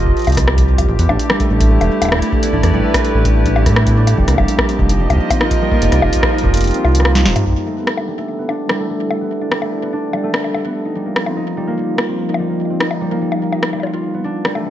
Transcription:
Already playing: F1 F3 F4 G4 A#4 D#5
0.07 kick
0.17 closed hi-hat
0.19 closed hi-hat
0.22 closed hi-hat
0.24 closed hi-hat
0.27 C2, closed hi-hat, high bongo
0.30 closed hi-hat
0.32 closed hi-hat
0.35 cross-stick, closed hi-hat
0.37 kick, closed hi-hat
0.48 cross-stick
0.58 kick, closed hi-hat
0.78 kick, closed hi-hat, high bongo
0.89 A1 A3, kick
0.99 E2 B3 E4, closed hi-hat
1.09 A1 D4, kick, high bongo
1.19 closed hi-hat
1.30 G3, cross-stick
1.40 A3, kick, closed hi-hat
1.50 A1 G3
1.61 kick, closed hi-hat
1.71 A3
1.81 E1 B3, closed hi-hat, high bongo
1.94 D5
2.02 D4, kick, closed hi-hat, high bongo
2.04 kick, high bongo
2.07 kick, high bongo
2.09 G3, kick
2.12 kick, cross-stick, high bongo
2.15 kick, high bongo
2.17 kick, high bongo
2.20 A3, kick, closed hi-hat
2.33 kick
2.37 B4
2.43 B3, closed hi-hat
2.53 A1 D4, kick
2.63 E2, cross-stick, closed hi-hat
2.74 A1 G3, kick
2.84 A3
2.94 G3, kick, cross-stick, closed hi-hat
3.05 closed hi-hat
3.15 A1 A3
3.25 B3, kick, closed hi-hat
3.46 D4, kick, closed hi-hat
3.56 G3, high bongo
3.66 A2 A3, kick, cross-stick, closed hi-hat
3.76 cross-stick
3.87 B3, kick, closed hi-hat
3.97 D4
4.07 closed hi-hat, high bongo
4.17 F1 F3 G3, kick
4.28 C2 A#3, cross-stick, closed hi-hat
4.38 F1 G3, kick, high bongo
4.48 D#5, closed hi-hat
4.59 A#3, kick, cross-stick
4.66 C4 F4, closed hi-hat
4.79 F1, kick
4.89 D#4, closed hi-hat
4.99 G3 A#4
5.10 C2 A#3, kick, closed hi-hat, high bongo
5.12 kick
5.15 kick
5.18 kick
5.30 C4, kick, closed hi-hat, high bongo
5.41 D#4, cross-stick
5.51 kick, closed hi-hat
5.62 G3
5.72 A#3, kick
5.82 F1 G3, closed hi-hat
5.92 C2, cross-stick, closed hi-hat
6.02 F1 A#3, kick, high bongo
6.09 C4, kick, closed hi-hat
6.16 kick
6.23 kick, cross-stick
6.33 D#4
6.38 closed hi-hat
6.44 F1 G3, kick
6.54 A#3, closed hi-hat
6.57 closed hi-hat
6.61 closed hi-hat
6.64 closed hi-hat
6.67 closed hi-hat
6.71 closed hi-hat
6.74 C4, closed hi-hat
6.84 C2 F4, high bongo
6.95 closed hi-hat
7.00 cross-stick
7.05 A#3, cross-stick
7.15 D#4, snare, closed hi-hat
7.26 D#1 C4, snare
7.36 closed hi-hat, mid tom, high bongo
7.46 G3 A3, kick
7.50 kick
7.53 kick
7.62 E4
7.67 A3
7.77 B3
7.87 cross-stick
7.97 D4, high bongo
8.08 G3
8.18 A3
8.29 D5
8.39 B3
8.49 D4, high bongo
8.69 G3 B4, cross-stick
8.80 A3
8.90 G3
9.11 A3, high bongo
9.21 B3
9.41 D4
9.52 G3, cross-stick
9.62 A3, high bongo
9.82 B3
9.93 D4
10.13 G3, high bongo
10.23 A3
10.34 G3, cross-stick
10.44 high bongo
10.54 A3, high bongo
10.65 B3
10.75 F3
10.82 D#4 F4
10.96 G3
11.06 A#3
11.16 cross-stick
11.26 C4 A#4, high bongo
11.37 D#4
11.57 G3
11.67 A#3
11.76 G3 D#5
11.98 A#3, cross-stick
12.09 C4
12.29 D#4
12.34 high bongo
12.39 G3
12.50 A#3
12.70 C4
12.80 D#4, cross-stick
12.91 high bongo
13.01 G3
13.11 A#3
13.22 G3
13.32 high bongo
13.42 A#3
13.52 D#4, high bongo
13.63 cross-stick
13.73 G3, high bongo
13.80 F4, high bongo
13.83 high bongo
13.87 high bongo
13.93 F4
14.04 A3
14.14 B3
14.24 D4
14.44 G3 E4, cross-stick
14.55 A3, high bongo
14.65 G3

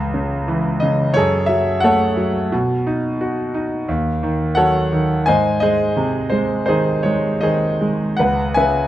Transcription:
Already playing: C#2
0.14 C#3
0.48 E3
0.80 C#3 D#5
1.14 F#2 G#4 A4 C#5
1.46 F#3 E5
1.80 A3 A4 C#5 F#5
2.17 F#3
2.52 B2
2.87 D#4
3.21 F#4
3.54 D#4
3.88 D#2
4.23 D#3
4.55 F#3 A4 C#5 F#5
4.93 D#3
5.26 G#2 C5 D#5 G#5
5.60 G#3 G#4 C5 D#5
5.97 C3
6.30 G#3 C5
6.66 D#3 D#4 G#4 C5
7.03 G#3 C#5
7.41 D#3 G#4 C5 D#5
7.81 G#3
8.17 C#2 B4 F#5
8.54 C#3 B4 E5 G#5

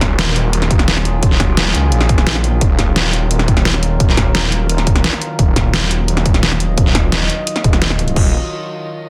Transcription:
Already playing: D#3 F#3 F4 G#4
0.01 D#1, kick, snare, closed hi-hat
0.19 snare, closed hi-hat
0.36 D#1, closed hi-hat
0.53 closed hi-hat
0.62 snare, closed hi-hat
0.71 kick, closed hi-hat
0.79 snare, closed hi-hat
0.88 D#1, snare, closed hi-hat
0.97 snare
1.05 closed hi-hat
1.23 D#1, kick, closed hi-hat
1.31 snare
1.40 kick, snare, closed hi-hat
1.57 snare, closed hi-hat
1.75 C#2, closed hi-hat
1.92 A#1, closed hi-hat
2.01 snare, closed hi-hat
2.09 kick, closed hi-hat
2.18 snare, closed hi-hat
2.27 A#1, snare, closed hi-hat
2.35 snare
2.44 closed hi-hat
2.61 D#1 A#4, kick, closed hi-hat
2.79 D#1, kick, snare, closed hi-hat
2.96 snare, closed hi-hat
3.13 D#1, closed hi-hat
3.31 closed hi-hat
3.39 snare, closed hi-hat
3.48 kick, closed hi-hat
3.57 snare, closed hi-hat
3.65 D#1, snare, closed hi-hat
3.74 snare
3.83 closed hi-hat
4.00 D#1, kick, closed hi-hat
4.09 snare
4.17 kick, snare, closed hi-hat
4.35 snare, closed hi-hat
4.52 D#1, closed hi-hat
4.69 closed hi-hat
4.78 snare, closed hi-hat
4.87 kick, closed hi-hat
4.96 snare, closed hi-hat
5.04 snare, closed hi-hat
5.13 snare
5.22 closed hi-hat
5.39 D#1 D#5, kick, closed hi-hat
5.56 D#1, kick, snare, closed hi-hat
5.74 snare, closed hi-hat
5.91 D#1, closed hi-hat
6.08 closed hi-hat
6.17 snare, closed hi-hat
6.26 kick, closed hi-hat
6.34 snare, closed hi-hat
6.43 D#1, snare, closed hi-hat
6.52 snare
6.60 closed hi-hat
6.78 D#1, kick, closed hi-hat
6.86 snare
6.95 kick, snare, closed hi-hat
7.12 snare, closed hi-hat
7.30 closed hi-hat
7.47 closed hi-hat
7.56 snare, closed hi-hat
7.64 D#1, kick, closed hi-hat
7.73 snare, closed hi-hat
7.82 snare, closed hi-hat
7.90 snare
7.99 closed hi-hat
8.08 closed hi-hat
8.16 D#1, kick, crash

